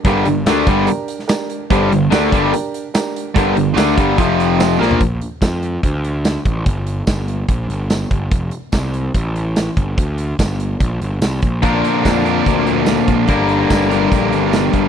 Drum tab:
HH |x-x-x-x-x-x-x-x-|x-x-x-x-x-x-x-x-|x-x-x-x-x-x-x---|x-x-x-x-x-x-x-x-|
TB |----x-------x---|----x-------x---|----x-------x---|----x-------x---|
SD |----o------oo---|----o-------o---|----o-------o-o-|----o-------o---|
FT |----------------|----------------|---------------o|----------------|
BD |o-----o---------|o-----o---------|o-----o-o-------|o---o---o-----o-|

HH |x-x-x-x-x-x-x-x-|x-x-x-x-x-x-x-x-|x-x-x-x-x-x-x-x-|x-x-x-x-x-x-x-x-|
TB |----x-------x---|----x-------x---|----x-------x---|----x-------x---|
SD |----o-------o---|----o-------o---|----o-------o---|----o-------o---|
FT |----------------|----------------|----------------|----------------|
BD |o---o---o-----o-|o---o---o-----o-|o---o---o-----o-|o---o---o-----o-|

HH |x-x-x-x-x-x-x-x-|
TB |----x-------x---|
SD |----o-------o---|
FT |----------------|
BD |o---o---o-----o-|